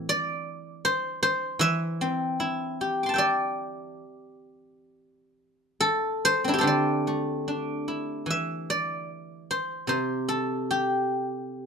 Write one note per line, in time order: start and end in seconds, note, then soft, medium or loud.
0.00 1.58 E3 medium
0.00 0.45 C4 soft
0.00 0.47 D4 soft
0.00 0.28 E4 medium
0.00 1.03 E5 medium
0.09 1.94 D5 loud
0.85 1.22 C5 loud
1.23 3.21 C5 loud
1.59 4.02 E3 medium
1.59 3.15 E5 loud
2.01 3.61 C4 medium
2.40 4.03 E4 medium
2.81 4.45 G4 medium
3.03 4.37 C6 soft
3.03 4.25 D6 soft
3.09 4.54 A5 soft
3.14 4.88 E5 medium
3.14 4.69 G5 medium
3.18 5.71 D5 medium
5.80 6.58 A4 loud
6.25 6.61 C5 loud
6.44 9.45 C4 soft
6.44 7.47 D4 medium
6.49 7.87 E4 medium
6.54 8.89 G4 medium
6.58 8.78 A4 medium
6.58 8.59 C5 medium
6.63 9.09 D3 soft
6.67 8.52 D5 medium
7.07 8.70 A3 soft
7.48 9.09 D4 soft
7.88 9.49 E4 soft
8.26 10.68 E3 soft
8.30 10.02 E5 medium
8.70 10.55 D5 medium
9.51 9.89 C5 medium
9.87 11.66 C3 medium
9.87 11.66 C5 medium
10.29 11.66 A4 medium
10.71 11.66 G4 medium